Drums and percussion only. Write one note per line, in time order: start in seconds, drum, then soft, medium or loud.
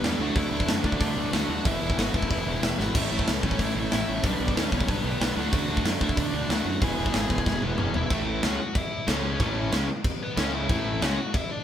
0.04 snare loud
0.04 open hi-hat medium
0.36 kick loud
0.36 open hi-hat medium
0.60 kick medium
0.68 snare loud
0.68 open hi-hat medium
0.84 kick medium
0.92 kick medium
1.01 kick loud
1.01 open hi-hat medium
1.33 snare loud
1.33 open hi-hat medium
1.65 kick loud
1.65 open hi-hat medium
1.90 kick loud
1.98 snare loud
1.98 open hi-hat medium
2.14 kick medium
2.22 kick medium
2.31 kick loud
2.31 open hi-hat medium
2.63 snare loud
2.63 open hi-hat medium
2.80 snare medium
2.95 kick loud
2.95 crash loud
2.95 splash medium
3.19 kick medium
3.27 snare loud
3.27 open hi-hat medium
3.43 kick medium
3.51 kick medium
3.59 kick loud
3.59 open hi-hat medium
3.92 snare loud
3.92 open hi-hat medium
4.24 kick loud
4.24 open hi-hat medium
4.48 kick medium
4.57 snare loud
4.57 open hi-hat medium
4.72 kick medium
4.80 kick medium
4.88 kick loud
4.88 open hi-hat medium
5.21 snare loud
5.21 open hi-hat medium
5.53 kick loud
5.53 open hi-hat medium
5.77 kick medium
5.85 snare loud
5.85 open hi-hat medium
6.01 kick medium
6.09 kick medium
6.17 kick loud
6.17 open hi-hat medium
6.50 snare loud
6.50 open hi-hat medium
6.82 kick loud
6.82 open hi-hat medium
7.06 kick medium
7.14 snare loud
7.14 open hi-hat medium
7.30 kick medium
7.38 kick medium
7.46 kick loud
7.46 snare medium
7.62 high tom medium
7.78 mid tom loud
7.94 floor tom loud
8.10 kick loud
8.10 crash medium
8.43 snare loud
8.43 crash medium
8.75 kick loud
8.75 crash medium
9.08 snare loud
9.08 crash medium
9.40 kick loud
9.40 crash medium
9.72 snare loud
9.72 crash medium
10.04 kick loud
10.04 crash medium
10.37 snare loud
10.37 crash medium
10.69 kick loud
10.69 crash medium
11.02 snare loud
11.02 crash medium
11.34 kick loud
11.34 crash medium